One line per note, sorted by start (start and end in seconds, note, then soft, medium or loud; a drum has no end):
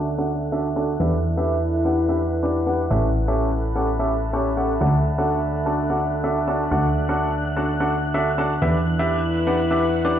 0.00 0.98 D2 medium
0.00 1.77 D4 medium
0.00 1.77 A4 medium
0.00 1.77 E5 medium
0.00 4.80 F#6 medium
0.18 0.30 D4 medium
0.18 0.30 F#4 medium
0.18 0.30 A4 medium
0.18 0.30 F#5 medium
0.52 0.67 D4 medium
0.52 0.67 F#4 medium
0.52 0.67 A4 medium
0.52 0.67 E5 loud
0.76 0.91 D4 medium
0.76 0.91 F#4 medium
0.76 0.91 A4 medium
0.76 0.91 A5 medium
1.00 2.88 E2 medium
1.00 1.14 D4 medium
1.00 3.67 E4 medium
1.00 1.14 G4 medium
1.00 1.14 B4 medium
1.00 1.14 E5 loud
1.24 open hi-hat loud
1.24 cabasa medium
1.33 3.67 B4 medium
1.37 1.58 D4 medium
1.37 1.58 G4 medium
1.37 1.58 B4 medium
1.37 1.58 E5 loud
1.85 1.96 D4 medium
1.85 1.96 G4 medium
1.85 1.96 B4 medium
1.85 1.96 F#5 medium
1.85 3.67 F#5 medium
2.09 2.20 D4 medium
2.09 2.20 G4 medium
2.09 2.20 B4 medium
2.09 2.20 E5 medium
2.43 2.57 D4 medium
2.43 2.57 G4 medium
2.43 2.57 B4 medium
2.43 2.57 D5 loud
2.67 2.81 D4 medium
2.67 2.81 G4 medium
2.67 2.81 B4 medium
2.67 2.81 F#5 medium
2.90 4.79 A1 medium
2.90 3.05 C#4 medium
2.90 3.05 G4 medium
2.90 3.05 A4 medium
2.90 9.39 A4 medium
2.90 3.05 E5 medium
3.07 6.35 B5 medium
3.14 open hi-hat loud
3.14 cabasa medium
3.26 3.48 C#4 medium
3.26 3.48 G4 medium
3.26 3.48 A4 medium
3.26 9.39 E5 medium
3.26 3.48 E5 loud
3.62 open hi-hat loud
3.76 3.87 C#4 medium
3.76 3.87 G4 medium
3.76 3.87 A4 medium
3.76 3.87 F#5 medium
3.99 4.11 C#4 medium
3.99 4.11 G4 medium
3.99 4.11 A4 medium
3.99 4.11 E5 medium
4.33 4.48 C#4 medium
4.33 4.48 G4 medium
4.33 4.48 A4 medium
4.33 4.48 C#5 loud
4.57 4.72 C#4 medium
4.57 4.72 G4 medium
4.57 4.72 A4 medium
4.57 4.72 F#5 medium
4.81 6.69 D2 medium
4.81 9.39 D4 medium
4.81 4.95 D4 medium
4.81 4.95 F#4 medium
4.81 4.95 A4 medium
4.81 4.95 F#5 loud
4.81 10.19 F#6 medium
5.05 open hi-hat medium
5.05 cabasa medium
5.18 5.39 D4 medium
5.18 5.39 F#4 medium
5.18 5.39 A4 medium
5.18 5.39 F#5 loud
5.52 open hi-hat loud
5.66 5.77 D4 medium
5.66 5.77 F#4 medium
5.66 5.77 A4 medium
5.66 5.77 A5 medium
5.90 6.01 D4 medium
5.90 6.01 F#4 medium
5.90 6.01 A4 medium
5.90 6.01 F#5 medium
6.00 open hi-hat medium
6.00 cabasa medium
6.24 6.38 D4 medium
6.24 6.38 F#4 medium
6.24 6.38 A4 medium
6.24 6.38 E5 loud
6.48 6.62 D4 medium
6.48 6.62 F#4 medium
6.48 6.62 A4 medium
6.48 6.62 A5 medium
6.48 open hi-hat loud
6.71 8.60 D2 medium
6.71 6.86 D4 medium
6.71 6.86 F#4 medium
6.71 6.86 A4 medium
6.71 6.86 F#5 loud
6.95 open hi-hat medium
6.95 cabasa medium
7.09 7.29 D4 medium
7.09 7.29 F#4 medium
7.09 7.29 A4 medium
7.09 7.29 F#5 loud
7.43 open hi-hat loud
7.43 cabasa medium
7.57 7.68 D4 medium
7.57 7.68 F#4 medium
7.57 7.68 A4 medium
7.57 7.68 A5 medium
7.80 7.92 D4 medium
7.80 7.92 F#4 medium
7.80 7.92 A4 medium
7.80 7.92 F#5 medium
7.90 open hi-hat medium
7.90 cabasa medium
8.05 cabasa soft
8.14 8.29 D4 medium
8.14 8.29 F#4 medium
8.14 8.29 A4 medium
8.14 8.29 E5 loud
8.38 8.53 D4 medium
8.38 8.53 F#4 medium
8.38 8.53 A4 medium
8.38 8.53 A5 medium
8.38 open hi-hat loud
8.38 cabasa medium
8.52 cabasa soft
8.62 10.19 E2 medium
8.62 8.76 D4 medium
8.62 10.19 E4 medium
8.62 8.76 G4 medium
8.62 8.76 B4 medium
8.62 8.76 E5 loud
8.74 10.19 B4 medium
8.86 open hi-hat medium
8.86 cabasa medium
8.99 9.20 D4 medium
8.99 9.20 G4 medium
8.99 9.20 B4 medium
8.99 9.20 E5 loud
9.28 10.19 F#5 medium
9.33 open hi-hat loud
9.33 cabasa medium
9.47 9.58 D4 medium
9.47 9.58 G4 medium
9.47 9.58 B4 medium
9.47 9.58 F#5 medium
9.58 cabasa soft
9.71 9.82 D4 medium
9.71 9.82 G4 medium
9.71 9.82 B4 medium
9.71 9.82 E5 medium
9.81 open hi-hat medium
9.81 cabasa medium
9.95 cabasa soft
10.05 10.19 D4 medium
10.05 10.19 G4 medium
10.05 10.19 B4 medium
10.05 10.19 D5 loud